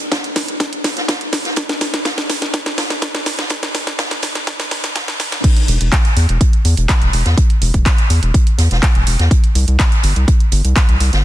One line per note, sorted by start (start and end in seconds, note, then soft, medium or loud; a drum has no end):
0.00 closed hi-hat soft
0.11 kick loud
0.11 snare loud
0.11 snare medium
0.11 closed hi-hat medium
0.24 closed hi-hat soft
0.36 snare medium
0.36 closed hi-hat medium
0.36 open hi-hat loud
0.48 closed hi-hat soft
0.60 kick loud
0.60 snare medium
0.60 closed hi-hat medium
0.73 closed hi-hat soft
0.84 snare medium
0.84 snare soft
0.84 closed hi-hat medium
0.84 open hi-hat loud
0.97 snare medium
0.97 closed hi-hat soft
1.08 kick loud
1.08 snare loud
1.08 closed hi-hat medium
1.21 closed hi-hat soft
1.32 snare medium
1.32 closed hi-hat medium
1.32 open hi-hat loud
1.45 snare medium
1.45 closed hi-hat soft
1.56 kick loud
1.56 snare medium
1.56 closed hi-hat medium
1.69 snare medium
1.69 closed hi-hat soft
1.81 snare medium
1.81 closed hi-hat medium
1.81 open hi-hat loud
1.94 snare medium
1.94 closed hi-hat soft
2.05 kick loud
2.05 snare medium
2.05 snare loud
2.05 closed hi-hat medium
2.18 snare medium
2.18 closed hi-hat soft
2.30 snare medium
2.30 closed hi-hat medium
2.30 open hi-hat loud
2.42 snare medium
2.42 closed hi-hat soft
2.54 kick loud
2.54 snare loud
2.54 closed hi-hat medium
2.66 snare medium
2.66 closed hi-hat soft
2.78 snare loud
2.78 closed hi-hat medium
2.78 open hi-hat loud
2.90 snare medium
2.90 closed hi-hat soft
3.02 kick loud
3.02 snare loud
3.02 closed hi-hat medium
3.15 snare medium
3.15 closed hi-hat soft
3.26 snare loud
3.26 closed hi-hat medium
3.26 open hi-hat loud
3.39 snare medium
3.39 closed hi-hat soft
3.49 kick loud
3.49 snare loud
3.49 closed hi-hat medium
3.63 snare medium
3.63 closed hi-hat soft
3.75 snare loud
3.75 closed hi-hat medium
3.75 open hi-hat loud
3.87 kick medium
3.87 snare medium
3.87 closed hi-hat soft
3.99 kick loud
3.99 snare loud
3.99 closed hi-hat medium
4.11 snare medium
4.11 closed hi-hat soft
4.22 snare loud
4.22 closed hi-hat medium
4.22 open hi-hat loud
4.35 snare medium
4.35 closed hi-hat soft
4.47 kick loud
4.47 snare loud
4.47 closed hi-hat medium
4.60 snare medium
4.60 closed hi-hat soft
4.60 closed hi-hat medium
4.71 snare loud
4.71 open hi-hat loud
4.83 snare loud
4.83 closed hi-hat medium
4.83 closed hi-hat soft
4.95 kick loud
4.95 snare loud
4.95 closed hi-hat medium
5.08 snare loud
5.08 closed hi-hat soft
5.20 snare loud
5.20 closed hi-hat medium
5.20 open hi-hat loud
5.31 snare medium
5.31 snare loud
5.31 closed hi-hat soft
5.44 kick loud
5.44 closed hi-hat loud
5.44 closed hi-hat medium
5.44 crash loud
5.57 closed hi-hat soft
5.68 5.78 E1 medium
5.68 closed hi-hat medium
5.68 open hi-hat loud
5.81 5.90 E1 medium
5.81 closed hi-hat soft
5.92 kick loud
5.92 snare loud
5.92 clap loud
5.92 closed hi-hat medium
6.05 closed hi-hat soft
6.17 6.26 E2 loud
6.17 closed hi-hat medium
6.17 open hi-hat loud
6.29 6.38 E1 medium
6.29 closed hi-hat soft
6.41 kick loud
6.41 closed hi-hat medium
6.53 closed hi-hat soft
6.65 6.75 E2 medium
6.65 closed hi-hat medium
6.65 open hi-hat loud
6.77 6.87 E1 medium
6.77 closed hi-hat soft
6.89 kick loud
6.89 snare loud
6.89 clap loud
6.89 closed hi-hat medium
7.01 7.11 E1 medium
7.01 closed hi-hat soft
7.13 7.23 E1 loud
7.13 closed hi-hat medium
7.13 open hi-hat loud
7.25 7.35 E2 medium
7.25 snare medium
7.25 closed hi-hat soft
7.37 kick loud
7.37 closed hi-hat loud
7.37 closed hi-hat medium
7.50 closed hi-hat soft
7.61 7.72 E1 medium
7.61 closed hi-hat medium
7.61 open hi-hat loud
7.74 7.83 E1 medium
7.74 kick medium
7.74 closed hi-hat soft
7.86 kick loud
7.86 snare loud
7.86 clap loud
7.86 closed hi-hat medium
7.98 closed hi-hat soft
8.10 8.20 E2 medium
8.10 closed hi-hat medium
8.10 open hi-hat loud
8.23 8.32 E1 medium
8.23 closed hi-hat soft
8.34 kick loud
8.34 closed hi-hat medium
8.47 closed hi-hat soft
8.58 8.68 E2 loud
8.58 snare soft
8.58 closed hi-hat medium
8.58 open hi-hat loud
8.71 8.80 E1 medium
8.71 snare medium
8.71 closed hi-hat soft
8.82 kick loud
8.82 snare loud
8.82 clap loud
8.82 closed hi-hat loud
8.82 closed hi-hat medium
8.95 9.04 E1 medium
8.95 closed hi-hat soft
9.07 9.17 E1 medium
9.07 closed hi-hat medium
9.07 open hi-hat loud
9.19 9.29 E2 medium
9.19 snare medium
9.19 closed hi-hat soft
9.31 kick loud
9.31 closed hi-hat medium
9.44 closed hi-hat soft
9.55 9.65 C2 medium
9.55 closed hi-hat medium
9.55 open hi-hat loud
9.68 9.77 C2 medium
9.68 closed hi-hat soft
9.79 kick loud
9.79 snare loud
9.79 clap loud
9.79 closed hi-hat medium
9.92 closed hi-hat soft
10.03 10.13 G1 medium
10.03 closed hi-hat medium
10.03 open hi-hat loud
10.16 10.25 C2 medium
10.16 closed hi-hat soft
10.28 kick loud
10.28 closed hi-hat medium
10.40 closed hi-hat soft
10.52 10.62 G1 loud
10.52 closed hi-hat medium
10.52 open hi-hat loud
10.64 10.74 C2 medium
10.64 closed hi-hat soft
10.76 kick loud
10.76 snare loud
10.76 clap loud
10.76 closed hi-hat medium
10.89 10.98 C2 medium
10.89 closed hi-hat soft
11.00 11.10 C2 loud
11.00 closed hi-hat medium
11.00 open hi-hat loud
11.13 11.22 G1 medium
11.13 snare medium
11.13 closed hi-hat soft